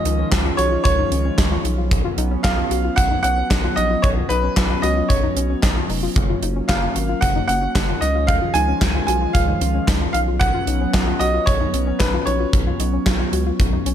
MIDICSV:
0, 0, Header, 1, 6, 480
1, 0, Start_track
1, 0, Tempo, 530973
1, 1730, Time_signature, 4, 2, 24, 8
1, 12606, End_track
2, 0, Start_track
2, 0, Title_t, "Grand piano"
2, 0, Program_c, 0, 0
2, 0, Note_on_c, 0, 75, 90
2, 250, Note_off_c, 0, 75, 0
2, 517, Note_on_c, 0, 73, 110
2, 743, Note_off_c, 0, 73, 0
2, 756, Note_on_c, 0, 73, 116
2, 1447, Note_off_c, 0, 73, 0
2, 2197, Note_on_c, 0, 77, 105
2, 2676, Note_on_c, 0, 78, 121
2, 2698, Note_off_c, 0, 77, 0
2, 2903, Note_off_c, 0, 78, 0
2, 2917, Note_on_c, 0, 78, 127
2, 3397, Note_on_c, 0, 75, 105
2, 3418, Note_off_c, 0, 78, 0
2, 3637, Note_on_c, 0, 73, 105
2, 3651, Note_off_c, 0, 75, 0
2, 3692, Note_off_c, 0, 73, 0
2, 3877, Note_on_c, 0, 71, 111
2, 4357, Note_on_c, 0, 75, 94
2, 4378, Note_off_c, 0, 71, 0
2, 4597, Note_on_c, 0, 73, 90
2, 4611, Note_off_c, 0, 75, 0
2, 5049, Note_off_c, 0, 73, 0
2, 6037, Note_on_c, 0, 77, 93
2, 6517, Note_on_c, 0, 78, 106
2, 6538, Note_off_c, 0, 77, 0
2, 6744, Note_off_c, 0, 78, 0
2, 6758, Note_on_c, 0, 78, 113
2, 7237, Note_on_c, 0, 75, 92
2, 7259, Note_off_c, 0, 78, 0
2, 7477, Note_on_c, 0, 77, 109
2, 7491, Note_off_c, 0, 75, 0
2, 7717, Note_on_c, 0, 80, 127
2, 7731, Note_off_c, 0, 77, 0
2, 8183, Note_off_c, 0, 80, 0
2, 8197, Note_on_c, 0, 80, 105
2, 8436, Note_on_c, 0, 77, 101
2, 8451, Note_off_c, 0, 80, 0
2, 8889, Note_off_c, 0, 77, 0
2, 9155, Note_on_c, 0, 77, 108
2, 9211, Note_off_c, 0, 77, 0
2, 9397, Note_on_c, 0, 78, 117
2, 10118, Note_on_c, 0, 75, 103
2, 10146, Note_off_c, 0, 78, 0
2, 10358, Note_on_c, 0, 73, 107
2, 10372, Note_off_c, 0, 75, 0
2, 10839, Note_on_c, 0, 71, 95
2, 10859, Note_off_c, 0, 73, 0
2, 11079, Note_on_c, 0, 73, 94
2, 11092, Note_off_c, 0, 71, 0
2, 12606, Note_off_c, 0, 73, 0
2, 12606, End_track
3, 0, Start_track
3, 0, Title_t, "Synth arpeggio sound"
3, 0, Program_c, 1, 84
3, 51, Note_on_c, 1, 63, 84
3, 111, Note_off_c, 1, 63, 0
3, 171, Note_on_c, 1, 61, 80
3, 231, Note_off_c, 1, 61, 0
3, 290, Note_on_c, 1, 65, 84
3, 351, Note_off_c, 1, 65, 0
3, 410, Note_on_c, 1, 65, 78
3, 471, Note_off_c, 1, 65, 0
3, 530, Note_on_c, 1, 66, 81
3, 590, Note_off_c, 1, 66, 0
3, 650, Note_on_c, 1, 65, 79
3, 771, Note_off_c, 1, 65, 0
3, 890, Note_on_c, 1, 63, 77
3, 951, Note_off_c, 1, 63, 0
3, 1010, Note_on_c, 1, 61, 87
3, 1071, Note_off_c, 1, 61, 0
3, 1130, Note_on_c, 1, 61, 76
3, 1191, Note_off_c, 1, 61, 0
3, 1251, Note_on_c, 1, 63, 88
3, 1311, Note_off_c, 1, 63, 0
3, 1371, Note_on_c, 1, 65, 79
3, 1431, Note_off_c, 1, 65, 0
3, 1490, Note_on_c, 1, 63, 83
3, 1551, Note_off_c, 1, 63, 0
3, 1610, Note_on_c, 1, 65, 77
3, 1671, Note_off_c, 1, 65, 0
3, 1850, Note_on_c, 1, 65, 80
3, 1911, Note_off_c, 1, 65, 0
3, 1970, Note_on_c, 1, 63, 82
3, 2031, Note_off_c, 1, 63, 0
3, 2090, Note_on_c, 1, 61, 83
3, 2150, Note_off_c, 1, 61, 0
3, 2210, Note_on_c, 1, 65, 85
3, 2271, Note_off_c, 1, 65, 0
3, 2330, Note_on_c, 1, 65, 79
3, 2391, Note_off_c, 1, 65, 0
3, 2450, Note_on_c, 1, 66, 85
3, 2511, Note_off_c, 1, 66, 0
3, 2571, Note_on_c, 1, 65, 79
3, 2692, Note_off_c, 1, 65, 0
3, 2811, Note_on_c, 1, 63, 75
3, 2871, Note_off_c, 1, 63, 0
3, 2931, Note_on_c, 1, 61, 83
3, 2991, Note_off_c, 1, 61, 0
3, 3050, Note_on_c, 1, 61, 77
3, 3111, Note_off_c, 1, 61, 0
3, 3171, Note_on_c, 1, 63, 89
3, 3231, Note_off_c, 1, 63, 0
3, 3290, Note_on_c, 1, 65, 76
3, 3351, Note_off_c, 1, 65, 0
3, 3410, Note_on_c, 1, 63, 84
3, 3471, Note_off_c, 1, 63, 0
3, 3530, Note_on_c, 1, 65, 79
3, 3591, Note_off_c, 1, 65, 0
3, 3770, Note_on_c, 1, 65, 78
3, 3831, Note_off_c, 1, 65, 0
3, 3890, Note_on_c, 1, 63, 83
3, 3951, Note_off_c, 1, 63, 0
3, 4010, Note_on_c, 1, 61, 81
3, 4071, Note_off_c, 1, 61, 0
3, 4130, Note_on_c, 1, 65, 89
3, 4191, Note_off_c, 1, 65, 0
3, 4250, Note_on_c, 1, 65, 79
3, 4311, Note_off_c, 1, 65, 0
3, 4370, Note_on_c, 1, 66, 82
3, 4431, Note_off_c, 1, 66, 0
3, 4490, Note_on_c, 1, 65, 77
3, 4611, Note_off_c, 1, 65, 0
3, 4730, Note_on_c, 1, 63, 77
3, 4791, Note_off_c, 1, 63, 0
3, 4850, Note_on_c, 1, 61, 84
3, 4910, Note_off_c, 1, 61, 0
3, 4970, Note_on_c, 1, 61, 75
3, 5031, Note_off_c, 1, 61, 0
3, 5090, Note_on_c, 1, 63, 89
3, 5151, Note_off_c, 1, 63, 0
3, 5210, Note_on_c, 1, 65, 80
3, 5271, Note_off_c, 1, 65, 0
3, 5330, Note_on_c, 1, 63, 80
3, 5391, Note_off_c, 1, 63, 0
3, 5450, Note_on_c, 1, 65, 79
3, 5511, Note_off_c, 1, 65, 0
3, 5690, Note_on_c, 1, 65, 79
3, 5751, Note_off_c, 1, 65, 0
3, 5810, Note_on_c, 1, 63, 84
3, 5871, Note_off_c, 1, 63, 0
3, 5931, Note_on_c, 1, 61, 80
3, 5991, Note_off_c, 1, 61, 0
3, 6050, Note_on_c, 1, 65, 85
3, 6111, Note_off_c, 1, 65, 0
3, 6170, Note_on_c, 1, 65, 81
3, 6231, Note_off_c, 1, 65, 0
3, 6290, Note_on_c, 1, 66, 82
3, 6350, Note_off_c, 1, 66, 0
3, 6410, Note_on_c, 1, 65, 78
3, 6531, Note_off_c, 1, 65, 0
3, 6650, Note_on_c, 1, 63, 78
3, 6711, Note_off_c, 1, 63, 0
3, 6770, Note_on_c, 1, 61, 86
3, 6831, Note_off_c, 1, 61, 0
3, 6890, Note_on_c, 1, 61, 76
3, 6951, Note_off_c, 1, 61, 0
3, 7010, Note_on_c, 1, 63, 87
3, 7071, Note_off_c, 1, 63, 0
3, 7131, Note_on_c, 1, 65, 82
3, 7191, Note_off_c, 1, 65, 0
3, 7250, Note_on_c, 1, 63, 81
3, 7311, Note_off_c, 1, 63, 0
3, 7370, Note_on_c, 1, 65, 74
3, 7431, Note_off_c, 1, 65, 0
3, 7610, Note_on_c, 1, 65, 81
3, 7670, Note_off_c, 1, 65, 0
3, 7730, Note_on_c, 1, 63, 83
3, 7791, Note_off_c, 1, 63, 0
3, 7850, Note_on_c, 1, 61, 82
3, 7911, Note_off_c, 1, 61, 0
3, 7970, Note_on_c, 1, 65, 86
3, 8031, Note_off_c, 1, 65, 0
3, 8091, Note_on_c, 1, 65, 78
3, 8151, Note_off_c, 1, 65, 0
3, 8210, Note_on_c, 1, 66, 81
3, 8271, Note_off_c, 1, 66, 0
3, 8331, Note_on_c, 1, 65, 80
3, 8452, Note_off_c, 1, 65, 0
3, 8571, Note_on_c, 1, 63, 76
3, 8631, Note_off_c, 1, 63, 0
3, 8691, Note_on_c, 1, 61, 87
3, 8751, Note_off_c, 1, 61, 0
3, 8811, Note_on_c, 1, 61, 76
3, 8871, Note_off_c, 1, 61, 0
3, 8931, Note_on_c, 1, 63, 89
3, 8991, Note_off_c, 1, 63, 0
3, 9051, Note_on_c, 1, 65, 80
3, 9111, Note_off_c, 1, 65, 0
3, 9171, Note_on_c, 1, 63, 83
3, 9231, Note_off_c, 1, 63, 0
3, 9291, Note_on_c, 1, 65, 77
3, 9351, Note_off_c, 1, 65, 0
3, 9530, Note_on_c, 1, 65, 79
3, 9591, Note_off_c, 1, 65, 0
3, 9650, Note_on_c, 1, 63, 82
3, 9711, Note_off_c, 1, 63, 0
3, 9771, Note_on_c, 1, 61, 84
3, 9831, Note_off_c, 1, 61, 0
3, 9890, Note_on_c, 1, 65, 89
3, 9951, Note_off_c, 1, 65, 0
3, 10011, Note_on_c, 1, 65, 79
3, 10071, Note_off_c, 1, 65, 0
3, 10131, Note_on_c, 1, 66, 85
3, 10192, Note_off_c, 1, 66, 0
3, 10251, Note_on_c, 1, 65, 76
3, 10372, Note_off_c, 1, 65, 0
3, 10491, Note_on_c, 1, 63, 75
3, 10551, Note_off_c, 1, 63, 0
3, 10611, Note_on_c, 1, 61, 86
3, 10671, Note_off_c, 1, 61, 0
3, 10731, Note_on_c, 1, 61, 77
3, 10791, Note_off_c, 1, 61, 0
3, 10851, Note_on_c, 1, 63, 93
3, 10911, Note_off_c, 1, 63, 0
3, 10971, Note_on_c, 1, 65, 83
3, 11031, Note_off_c, 1, 65, 0
3, 11091, Note_on_c, 1, 63, 86
3, 11151, Note_off_c, 1, 63, 0
3, 11211, Note_on_c, 1, 65, 77
3, 11271, Note_off_c, 1, 65, 0
3, 11451, Note_on_c, 1, 65, 80
3, 11511, Note_off_c, 1, 65, 0
3, 11571, Note_on_c, 1, 63, 82
3, 11631, Note_off_c, 1, 63, 0
3, 11690, Note_on_c, 1, 61, 84
3, 11751, Note_off_c, 1, 61, 0
3, 11811, Note_on_c, 1, 65, 89
3, 11871, Note_off_c, 1, 65, 0
3, 11931, Note_on_c, 1, 65, 78
3, 11991, Note_off_c, 1, 65, 0
3, 12050, Note_on_c, 1, 66, 85
3, 12111, Note_off_c, 1, 66, 0
3, 12171, Note_on_c, 1, 65, 79
3, 12292, Note_off_c, 1, 65, 0
3, 12411, Note_on_c, 1, 63, 77
3, 12471, Note_off_c, 1, 63, 0
3, 12531, Note_on_c, 1, 61, 86
3, 12591, Note_off_c, 1, 61, 0
3, 12606, End_track
4, 0, Start_track
4, 0, Title_t, "Analog synth pad"
4, 0, Program_c, 2, 89
4, 0, Note_on_c, 2, 51, 82
4, 0, Note_on_c, 2, 53, 76
4, 0, Note_on_c, 2, 56, 77
4, 0, Note_on_c, 2, 61, 89
4, 0, Note_on_c, 2, 65, 90
4, 1454, Note_off_c, 2, 61, 0
4, 1471, Note_off_c, 2, 51, 0
4, 1471, Note_off_c, 2, 53, 0
4, 1471, Note_off_c, 2, 56, 0
4, 1471, Note_off_c, 2, 65, 0
4, 1491, Note_on_c, 2, 54, 82
4, 1491, Note_on_c, 2, 59, 74
4, 1491, Note_on_c, 2, 61, 93
4, 5534, Note_off_c, 2, 59, 0
4, 5570, Note_on_c, 2, 58, 77
4, 7214, Note_off_c, 2, 54, 0
4, 7233, Note_off_c, 2, 58, 0
4, 7249, Note_on_c, 2, 51, 86
4, 7249, Note_on_c, 2, 53, 77
4, 7249, Note_on_c, 2, 56, 78
4, 7250, Note_on_c, 2, 65, 93
4, 9134, Note_off_c, 2, 61, 0
4, 9150, Note_off_c, 2, 53, 0
4, 9151, Note_off_c, 2, 51, 0
4, 9151, Note_off_c, 2, 56, 0
4, 9151, Note_off_c, 2, 65, 0
4, 9170, Note_on_c, 2, 54, 82
4, 9170, Note_on_c, 2, 59, 76
4, 9170, Note_on_c, 2, 61, 91
4, 12606, Note_off_c, 2, 54, 0
4, 12606, Note_off_c, 2, 59, 0
4, 12606, Note_off_c, 2, 61, 0
4, 12606, End_track
5, 0, Start_track
5, 0, Title_t, "Analog synth bass"
5, 0, Program_c, 3, 38
5, 50, Note_on_c, 3, 37, 105
5, 218, Note_off_c, 3, 37, 0
5, 290, Note_on_c, 3, 37, 102
5, 458, Note_off_c, 3, 37, 0
5, 530, Note_on_c, 3, 35, 96
5, 698, Note_off_c, 3, 35, 0
5, 771, Note_on_c, 3, 37, 116
5, 939, Note_off_c, 3, 37, 0
5, 1010, Note_on_c, 3, 37, 98
5, 1178, Note_off_c, 3, 37, 0
5, 1251, Note_on_c, 3, 37, 108
5, 1418, Note_off_c, 3, 37, 0
5, 1490, Note_on_c, 3, 35, 104
5, 1826, Note_off_c, 3, 35, 0
5, 1971, Note_on_c, 3, 35, 112
5, 2139, Note_off_c, 3, 35, 0
5, 2211, Note_on_c, 3, 35, 111
5, 2378, Note_off_c, 3, 35, 0
5, 2451, Note_on_c, 3, 35, 101
5, 2619, Note_off_c, 3, 35, 0
5, 2691, Note_on_c, 3, 35, 108
5, 2859, Note_off_c, 3, 35, 0
5, 2931, Note_on_c, 3, 35, 99
5, 3099, Note_off_c, 3, 35, 0
5, 3171, Note_on_c, 3, 35, 104
5, 3338, Note_off_c, 3, 35, 0
5, 3411, Note_on_c, 3, 34, 97
5, 3579, Note_off_c, 3, 34, 0
5, 3650, Note_on_c, 3, 35, 115
5, 3818, Note_off_c, 3, 35, 0
5, 3891, Note_on_c, 3, 35, 109
5, 4059, Note_off_c, 3, 35, 0
5, 4130, Note_on_c, 3, 35, 102
5, 4298, Note_off_c, 3, 35, 0
5, 4371, Note_on_c, 3, 37, 91
5, 4539, Note_off_c, 3, 37, 0
5, 4611, Note_on_c, 3, 35, 104
5, 4778, Note_off_c, 3, 35, 0
5, 4851, Note_on_c, 3, 35, 94
5, 5019, Note_off_c, 3, 35, 0
5, 5090, Note_on_c, 3, 35, 117
5, 5258, Note_off_c, 3, 35, 0
5, 5331, Note_on_c, 3, 29, 102
5, 5498, Note_off_c, 3, 29, 0
5, 5570, Note_on_c, 3, 30, 119
5, 5738, Note_off_c, 3, 30, 0
5, 5811, Note_on_c, 3, 30, 107
5, 5979, Note_off_c, 3, 30, 0
5, 6050, Note_on_c, 3, 30, 110
5, 6218, Note_off_c, 3, 30, 0
5, 6290, Note_on_c, 3, 32, 97
5, 6458, Note_off_c, 3, 32, 0
5, 6531, Note_on_c, 3, 30, 110
5, 6699, Note_off_c, 3, 30, 0
5, 6770, Note_on_c, 3, 30, 100
5, 6938, Note_off_c, 3, 30, 0
5, 7010, Note_on_c, 3, 30, 111
5, 7178, Note_off_c, 3, 30, 0
5, 7250, Note_on_c, 3, 37, 106
5, 7586, Note_off_c, 3, 37, 0
5, 7730, Note_on_c, 3, 37, 104
5, 7898, Note_off_c, 3, 37, 0
5, 7970, Note_on_c, 3, 37, 102
5, 8138, Note_off_c, 3, 37, 0
5, 8210, Note_on_c, 3, 35, 98
5, 8378, Note_off_c, 3, 35, 0
5, 8451, Note_on_c, 3, 37, 108
5, 8619, Note_off_c, 3, 37, 0
5, 8690, Note_on_c, 3, 37, 101
5, 8858, Note_off_c, 3, 37, 0
5, 8931, Note_on_c, 3, 37, 110
5, 9098, Note_off_c, 3, 37, 0
5, 9170, Note_on_c, 3, 35, 99
5, 9506, Note_off_c, 3, 35, 0
5, 9650, Note_on_c, 3, 35, 111
5, 9818, Note_off_c, 3, 35, 0
5, 9890, Note_on_c, 3, 35, 114
5, 10058, Note_off_c, 3, 35, 0
5, 10130, Note_on_c, 3, 35, 103
5, 10298, Note_off_c, 3, 35, 0
5, 10371, Note_on_c, 3, 35, 112
5, 10539, Note_off_c, 3, 35, 0
5, 10610, Note_on_c, 3, 35, 99
5, 10778, Note_off_c, 3, 35, 0
5, 10851, Note_on_c, 3, 35, 109
5, 11018, Note_off_c, 3, 35, 0
5, 11091, Note_on_c, 3, 34, 98
5, 11259, Note_off_c, 3, 34, 0
5, 11330, Note_on_c, 3, 35, 113
5, 11498, Note_off_c, 3, 35, 0
5, 11571, Note_on_c, 3, 35, 108
5, 11738, Note_off_c, 3, 35, 0
5, 11810, Note_on_c, 3, 35, 100
5, 11978, Note_off_c, 3, 35, 0
5, 12050, Note_on_c, 3, 37, 91
5, 12218, Note_off_c, 3, 37, 0
5, 12291, Note_on_c, 3, 35, 110
5, 12459, Note_off_c, 3, 35, 0
5, 12530, Note_on_c, 3, 35, 92
5, 12606, Note_off_c, 3, 35, 0
5, 12606, End_track
6, 0, Start_track
6, 0, Title_t, "Drums"
6, 49, Note_on_c, 9, 42, 82
6, 139, Note_off_c, 9, 42, 0
6, 290, Note_on_c, 9, 36, 126
6, 290, Note_on_c, 9, 38, 121
6, 290, Note_on_c, 9, 39, 107
6, 290, Note_on_c, 9, 42, 84
6, 380, Note_off_c, 9, 38, 0
6, 380, Note_off_c, 9, 39, 0
6, 380, Note_off_c, 9, 42, 0
6, 381, Note_off_c, 9, 36, 0
6, 530, Note_on_c, 9, 42, 84
6, 620, Note_off_c, 9, 42, 0
6, 770, Note_on_c, 9, 42, 90
6, 771, Note_on_c, 9, 36, 113
6, 860, Note_off_c, 9, 42, 0
6, 861, Note_off_c, 9, 36, 0
6, 1011, Note_on_c, 9, 42, 84
6, 1101, Note_off_c, 9, 42, 0
6, 1249, Note_on_c, 9, 38, 119
6, 1249, Note_on_c, 9, 39, 96
6, 1250, Note_on_c, 9, 42, 90
6, 1251, Note_on_c, 9, 36, 127
6, 1340, Note_off_c, 9, 38, 0
6, 1340, Note_off_c, 9, 39, 0
6, 1340, Note_off_c, 9, 42, 0
6, 1341, Note_off_c, 9, 36, 0
6, 1490, Note_on_c, 9, 42, 78
6, 1581, Note_off_c, 9, 42, 0
6, 1730, Note_on_c, 9, 36, 127
6, 1730, Note_on_c, 9, 42, 74
6, 1821, Note_off_c, 9, 36, 0
6, 1821, Note_off_c, 9, 42, 0
6, 1969, Note_on_c, 9, 42, 82
6, 2059, Note_off_c, 9, 42, 0
6, 2210, Note_on_c, 9, 36, 125
6, 2210, Note_on_c, 9, 38, 125
6, 2210, Note_on_c, 9, 39, 110
6, 2210, Note_on_c, 9, 42, 84
6, 2300, Note_off_c, 9, 42, 0
6, 2301, Note_off_c, 9, 36, 0
6, 2301, Note_off_c, 9, 38, 0
6, 2301, Note_off_c, 9, 39, 0
6, 2450, Note_on_c, 9, 42, 82
6, 2540, Note_off_c, 9, 42, 0
6, 2691, Note_on_c, 9, 36, 114
6, 2691, Note_on_c, 9, 42, 85
6, 2781, Note_off_c, 9, 36, 0
6, 2781, Note_off_c, 9, 42, 0
6, 2931, Note_on_c, 9, 42, 83
6, 3022, Note_off_c, 9, 42, 0
6, 3170, Note_on_c, 9, 38, 118
6, 3170, Note_on_c, 9, 39, 99
6, 3170, Note_on_c, 9, 42, 91
6, 3171, Note_on_c, 9, 36, 127
6, 3260, Note_off_c, 9, 38, 0
6, 3260, Note_off_c, 9, 39, 0
6, 3261, Note_off_c, 9, 36, 0
6, 3261, Note_off_c, 9, 42, 0
6, 3411, Note_on_c, 9, 42, 74
6, 3501, Note_off_c, 9, 42, 0
6, 3650, Note_on_c, 9, 36, 125
6, 3650, Note_on_c, 9, 42, 70
6, 3740, Note_off_c, 9, 36, 0
6, 3740, Note_off_c, 9, 42, 0
6, 3889, Note_on_c, 9, 42, 78
6, 3979, Note_off_c, 9, 42, 0
6, 4130, Note_on_c, 9, 36, 121
6, 4130, Note_on_c, 9, 38, 124
6, 4130, Note_on_c, 9, 39, 114
6, 4130, Note_on_c, 9, 42, 89
6, 4220, Note_off_c, 9, 38, 0
6, 4220, Note_off_c, 9, 39, 0
6, 4220, Note_off_c, 9, 42, 0
6, 4221, Note_off_c, 9, 36, 0
6, 4369, Note_on_c, 9, 42, 82
6, 4460, Note_off_c, 9, 42, 0
6, 4610, Note_on_c, 9, 42, 89
6, 4611, Note_on_c, 9, 36, 117
6, 4700, Note_off_c, 9, 42, 0
6, 4701, Note_off_c, 9, 36, 0
6, 4850, Note_on_c, 9, 42, 82
6, 4941, Note_off_c, 9, 42, 0
6, 5089, Note_on_c, 9, 38, 115
6, 5089, Note_on_c, 9, 39, 96
6, 5090, Note_on_c, 9, 36, 127
6, 5090, Note_on_c, 9, 42, 96
6, 5180, Note_off_c, 9, 38, 0
6, 5180, Note_off_c, 9, 39, 0
6, 5180, Note_off_c, 9, 42, 0
6, 5181, Note_off_c, 9, 36, 0
6, 5330, Note_on_c, 9, 46, 77
6, 5420, Note_off_c, 9, 46, 0
6, 5570, Note_on_c, 9, 36, 127
6, 5570, Note_on_c, 9, 42, 69
6, 5660, Note_off_c, 9, 36, 0
6, 5660, Note_off_c, 9, 42, 0
6, 5809, Note_on_c, 9, 42, 79
6, 5899, Note_off_c, 9, 42, 0
6, 6049, Note_on_c, 9, 42, 87
6, 6050, Note_on_c, 9, 36, 127
6, 6050, Note_on_c, 9, 38, 127
6, 6050, Note_on_c, 9, 39, 110
6, 6140, Note_off_c, 9, 36, 0
6, 6140, Note_off_c, 9, 38, 0
6, 6140, Note_off_c, 9, 39, 0
6, 6140, Note_off_c, 9, 42, 0
6, 6290, Note_on_c, 9, 42, 86
6, 6380, Note_off_c, 9, 42, 0
6, 6530, Note_on_c, 9, 42, 88
6, 6531, Note_on_c, 9, 36, 112
6, 6620, Note_off_c, 9, 42, 0
6, 6621, Note_off_c, 9, 36, 0
6, 6771, Note_on_c, 9, 42, 80
6, 6862, Note_off_c, 9, 42, 0
6, 7010, Note_on_c, 9, 36, 127
6, 7010, Note_on_c, 9, 38, 114
6, 7010, Note_on_c, 9, 39, 97
6, 7010, Note_on_c, 9, 42, 91
6, 7100, Note_off_c, 9, 38, 0
6, 7100, Note_off_c, 9, 39, 0
6, 7101, Note_off_c, 9, 36, 0
6, 7101, Note_off_c, 9, 42, 0
6, 7250, Note_on_c, 9, 42, 77
6, 7341, Note_off_c, 9, 42, 0
6, 7490, Note_on_c, 9, 36, 124
6, 7490, Note_on_c, 9, 42, 72
6, 7580, Note_off_c, 9, 36, 0
6, 7580, Note_off_c, 9, 42, 0
6, 7728, Note_on_c, 9, 42, 80
6, 7819, Note_off_c, 9, 42, 0
6, 7969, Note_on_c, 9, 38, 127
6, 7969, Note_on_c, 9, 39, 106
6, 7969, Note_on_c, 9, 42, 88
6, 7970, Note_on_c, 9, 36, 121
6, 8060, Note_off_c, 9, 36, 0
6, 8060, Note_off_c, 9, 38, 0
6, 8060, Note_off_c, 9, 39, 0
6, 8060, Note_off_c, 9, 42, 0
6, 8210, Note_on_c, 9, 42, 85
6, 8300, Note_off_c, 9, 42, 0
6, 8450, Note_on_c, 9, 42, 87
6, 8451, Note_on_c, 9, 36, 114
6, 8541, Note_off_c, 9, 36, 0
6, 8541, Note_off_c, 9, 42, 0
6, 8691, Note_on_c, 9, 42, 85
6, 8781, Note_off_c, 9, 42, 0
6, 8930, Note_on_c, 9, 36, 126
6, 8930, Note_on_c, 9, 38, 117
6, 8930, Note_on_c, 9, 39, 97
6, 8930, Note_on_c, 9, 42, 92
6, 9020, Note_off_c, 9, 38, 0
6, 9020, Note_off_c, 9, 39, 0
6, 9021, Note_off_c, 9, 36, 0
6, 9021, Note_off_c, 9, 42, 0
6, 9171, Note_on_c, 9, 42, 76
6, 9261, Note_off_c, 9, 42, 0
6, 9410, Note_on_c, 9, 36, 122
6, 9410, Note_on_c, 9, 42, 71
6, 9500, Note_off_c, 9, 36, 0
6, 9500, Note_off_c, 9, 42, 0
6, 9649, Note_on_c, 9, 42, 81
6, 9739, Note_off_c, 9, 42, 0
6, 9890, Note_on_c, 9, 36, 122
6, 9890, Note_on_c, 9, 38, 125
6, 9890, Note_on_c, 9, 39, 108
6, 9890, Note_on_c, 9, 42, 87
6, 9980, Note_off_c, 9, 38, 0
6, 9980, Note_off_c, 9, 39, 0
6, 9980, Note_off_c, 9, 42, 0
6, 9981, Note_off_c, 9, 36, 0
6, 10130, Note_on_c, 9, 42, 85
6, 10221, Note_off_c, 9, 42, 0
6, 10370, Note_on_c, 9, 42, 90
6, 10371, Note_on_c, 9, 36, 113
6, 10461, Note_off_c, 9, 36, 0
6, 10461, Note_off_c, 9, 42, 0
6, 10611, Note_on_c, 9, 42, 85
6, 10701, Note_off_c, 9, 42, 0
6, 10849, Note_on_c, 9, 38, 112
6, 10849, Note_on_c, 9, 39, 98
6, 10850, Note_on_c, 9, 42, 91
6, 10851, Note_on_c, 9, 36, 127
6, 10940, Note_off_c, 9, 38, 0
6, 10940, Note_off_c, 9, 39, 0
6, 10940, Note_off_c, 9, 42, 0
6, 10941, Note_off_c, 9, 36, 0
6, 11090, Note_on_c, 9, 42, 76
6, 11181, Note_off_c, 9, 42, 0
6, 11330, Note_on_c, 9, 36, 127
6, 11330, Note_on_c, 9, 42, 71
6, 11420, Note_off_c, 9, 36, 0
6, 11420, Note_off_c, 9, 42, 0
6, 11568, Note_on_c, 9, 42, 81
6, 11659, Note_off_c, 9, 42, 0
6, 11810, Note_on_c, 9, 36, 125
6, 11810, Note_on_c, 9, 38, 125
6, 11810, Note_on_c, 9, 39, 105
6, 11810, Note_on_c, 9, 42, 86
6, 11900, Note_off_c, 9, 38, 0
6, 11900, Note_off_c, 9, 39, 0
6, 11900, Note_off_c, 9, 42, 0
6, 11901, Note_off_c, 9, 36, 0
6, 12050, Note_on_c, 9, 42, 82
6, 12140, Note_off_c, 9, 42, 0
6, 12290, Note_on_c, 9, 42, 85
6, 12291, Note_on_c, 9, 36, 116
6, 12381, Note_off_c, 9, 36, 0
6, 12381, Note_off_c, 9, 42, 0
6, 12531, Note_on_c, 9, 42, 82
6, 12606, Note_off_c, 9, 42, 0
6, 12606, End_track
0, 0, End_of_file